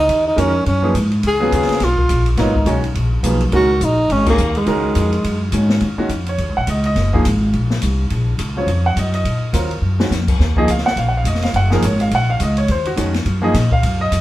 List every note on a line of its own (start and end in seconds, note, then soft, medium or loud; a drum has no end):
0.00 0.25 D#4 medium
0.09 0.36 D#2 medium
0.09 ride medium
0.27 0.41 D#4 medium
0.36 0.65 F2 medium
0.36 0.52 D#3 medium
0.36 0.52 G#3 medium
0.36 0.52 C#4 medium
0.36 0.66 C#4 medium
0.36 0.52 F#4 medium
0.36 0.53 A#4 medium
0.36 hi-hat pedal soft
0.36 ride medium
0.66 0.94 F#2 medium
0.66 0.93 C#4 medium
0.66 ride medium
0.82 0.93 F3 medium
0.82 0.93 A#3 medium
0.82 0.93 D#4 medium
0.82 0.94 G#4 medium
0.82 0.94 B4 medium
0.94 1.22 G#2 medium
0.94 hi-hat pedal medium
0.94 ride medium
1.11 ride soft
1.23 1.51 C#2 medium
1.23 1.52 G#4 loud
1.23 ride medium
1.40 1.78 C#3 medium
1.40 1.78 F#3 medium
1.40 1.78 B3 medium
1.40 1.79 F4 medium
1.40 1.79 G#4 medium
1.52 1.68 D#2 medium
1.52 1.85 G#4 medium
1.52 hi-hat pedal soft
1.52 ride medium
1.62 snare soft
1.69 muted upright bass stroke soft
1.69 snare soft
1.69 ride soft
1.80 2.08 B1 medium
1.80 2.28 F4 medium
1.80 snare soft
1.80 ride medium
1.97 kick medium
2.09 2.36 A#1 medium
2.09 hi-hat pedal medium
2.09 ride medium
2.26 ride soft
2.37 2.65 G#1 medium
2.37 2.53 F#3 medium
2.37 2.53 B3 medium
2.37 2.81 D#4 medium
2.37 2.53 F4 medium
2.37 2.54 A#4 medium
2.37 2.54 C#5 medium
2.37 snare soft
2.37 ride medium
2.55 kick soft
2.65 2.94 B1 medium
2.65 2.82 D#3 medium
2.65 2.82 G#3 medium
2.65 2.82 C#4 medium
2.65 2.82 F#4 medium
2.65 2.82 C#5 medium
2.65 hi-hat pedal medium
2.65 ride medium
2.84 ride soft
2.95 3.22 A#1 medium
2.95 ride medium
3.23 3.51 B1 medium
3.23 3.39 F3 medium
3.23 3.39 A#3 medium
3.23 3.39 D#4 soft
3.23 3.39 G#4 medium
3.23 3.39 B4 medium
3.23 hi-hat pedal medium
3.23 ride medium
3.40 ride soft
3.52 3.80 C#2 medium
3.52 3.68 D#3 medium
3.52 3.68 G#3 medium
3.52 3.68 C#4 medium
3.52 3.68 F#4 medium
3.52 3.86 F#4 loud
3.52 3.68 A#4 medium
3.52 ride medium
3.81 4.09 A#1 medium
3.81 4.13 D#4 medium
3.81 hi-hat pedal medium
3.81 ride medium
4.09 4.37 G#1 medium
4.09 4.28 C#4 loud
4.09 ride medium
4.26 4.37 D#3 medium
4.26 4.37 G#3 medium
4.26 4.58 A#3 medium
4.26 4.37 C#4 medium
4.26 4.37 F#4 medium
4.26 4.37 G#4 medium
4.26 kick medium
4.26 crash medium
4.38 4.66 D#2 loud
4.38 hi-hat pedal medium
4.55 5.54 G#3 medium
4.55 ride soft
4.66 4.95 C#2 medium
4.66 5.09 D#3 medium
4.66 5.09 G#3 medium
4.66 5.09 C#4 medium
4.66 5.09 F#4 medium
4.66 5.10 A#4 medium
4.66 ride medium
4.95 5.23 F2 medium
4.95 hi-hat pedal medium
4.95 ride medium
5.12 ride soft
5.24 5.51 F#2 medium
5.24 ride medium
5.52 5.80 G#2 medium
5.52 5.81 D#3 medium
5.52 5.82 G#3 soft
5.52 5.82 C#4 soft
5.52 5.82 F#4 soft
5.52 5.82 C#5 medium
5.52 hi-hat pedal medium
5.52 ride medium
5.69 snare medium
5.81 5.97 D#2 medium
5.81 ride medium
5.97 6.09 D#3 medium
5.97 6.09 G#3 medium
5.97 6.09 C#4 medium
5.97 6.09 F#4 medium
5.97 muted upright bass stroke soft
6.09 6.37 F2 medium
6.09 hi-hat pedal soft
6.09 ride medium
6.26 6.55 C#5 medium
6.26 ride soft
6.38 6.48 D#2 medium
6.38 ride soft
6.48 6.57 C#2 soft
6.57 6.66 A#1 medium
6.57 6.68 F#5 medium
6.67 6.95 C#2 medium
6.67 6.85 D#5 medium
6.67 hi-hat pedal medium
6.67 ride medium
6.84 7.23 D#5 medium
6.84 ride soft
6.96 7.24 F#1 medium
6.96 snare soft
6.96 ride medium
7.13 7.24 F3 medium
7.13 7.24 A#3 medium
7.13 7.24 D#4 medium
7.13 7.24 G#4 medium
7.13 kick soft
7.25 7.53 G#1 medium
7.25 hi-hat pedal medium
7.25 ride medium
7.53 7.81 A#1 medium
7.53 ride soft
7.70 snare soft
7.82 8.10 C2 medium
7.82 hi-hat pedal medium
7.82 ride medium
8.10 8.38 A#1 medium
8.10 ride medium
8.38 8.66 C#2 medium
8.38 hi-hat pedal soft
8.38 ride medium
8.56 8.67 C#3 medium
8.56 8.67 F#3 medium
8.56 8.67 C4 medium
8.56 8.67 F4 medium
8.56 8.84 C#5 medium
8.67 8.95 F2 medium
8.67 ride medium
8.86 8.97 F#5 medium
8.96 9.24 F#2 medium
8.96 9.13 D#5 medium
8.96 hi-hat pedal soft
8.96 ride medium
9.14 9.52 D#5 medium
9.14 ride soft
9.24 9.53 A#2 medium
9.24 ride medium
9.53 9.81 D#2 medium
9.53 9.69 F#3 medium
9.53 9.69 C4 soft
9.53 9.69 F4 medium
9.53 9.69 A#4 medium
9.53 hi-hat pedal medium
9.53 ride medium
9.71 ride soft
9.81 10.10 F#2 medium
9.99 10.10 D#3 medium
9.99 10.10 G#3 medium
9.99 10.10 C#4 medium
9.99 10.10 F#4 medium
9.99 snare medium
10.10 10.38 F2 medium
10.10 snare medium
10.10 hi-hat pedal medium
10.28 kick medium
10.28 crash medium
10.39 10.67 D#2 medium
10.39 snare soft
10.56 10.67 F3 medium
10.56 10.67 A#3 medium
10.56 10.67 D#4 medium
10.56 10.68 G#4 medium
10.56 10.69 D#5 medium
10.56 kick medium
10.67 10.96 C#2 medium
10.67 10.86 F5 medium
10.67 hi-hat pedal medium
10.67 ride medium
10.78 snare soft
10.86 10.97 F#5 loud
10.86 snare soft
10.96 11.24 A#1 medium
10.96 11.07 F5 medium
10.96 ride medium
11.09 11.17 F#5 medium
11.17 11.26 F5 medium
11.24 11.53 F1 medium
11.24 11.43 D#5 medium
11.24 hi-hat pedal soft
11.24 ride medium
11.35 snare soft
11.42 11.54 F5 medium
11.42 snare soft
11.42 ride soft
11.53 11.81 F#1 medium
11.53 11.72 F#5 medium
11.53 ride medium
11.70 11.81 F3 medium
11.70 11.81 A#3 medium
11.70 11.82 D#4 medium
11.70 11.82 G#4 medium
11.70 11.83 A#4 medium
11.70 snare soft
11.82 12.10 G#1 medium
11.82 12.00 C#5 medium
11.82 hi-hat pedal medium
11.82 ride medium
12.00 12.12 F5 medium
12.00 ride medium
12.11 12.39 A#1 medium
12.11 12.30 F#5 loud
12.11 ride medium
12.30 12.40 F5 medium
12.40 12.68 C#2 loud
12.40 12.58 D#5 medium
12.40 hi-hat pedal soft
12.40 ride medium
12.57 12.69 C#5 medium
12.57 ride soft
12.68 12.96 D#2 loud
12.68 12.86 C5 medium
12.68 ride medium
12.85 12.93 F#4 medium
12.85 ride soft
12.96 13.25 F2 medium
12.96 13.12 D#3 medium
12.96 13.12 G#3 medium
12.96 13.12 C#4 medium
12.96 13.13 F#4 medium
12.96 hi-hat pedal medium
12.96 ride medium
13.14 snare soft
13.14 ride soft
13.25 13.53 F#2 medium
13.25 ride medium
13.42 13.52 F3 medium
13.42 13.53 A#3 medium
13.42 13.53 D#4 medium
13.42 13.53 G#4 medium
13.42 13.70 D#5 medium
13.54 13.82 A#2 loud
13.54 snare soft
13.54 hi-hat pedal medium
13.54 ride medium
13.71 13.98 F5 loud
13.71 kick medium
13.83 14.10 F#2 medium
13.83 ride medium
14.01 14.21 D#5 loud
14.11 14.21 F2 medium
14.11 hi-hat pedal medium
14.11 ride medium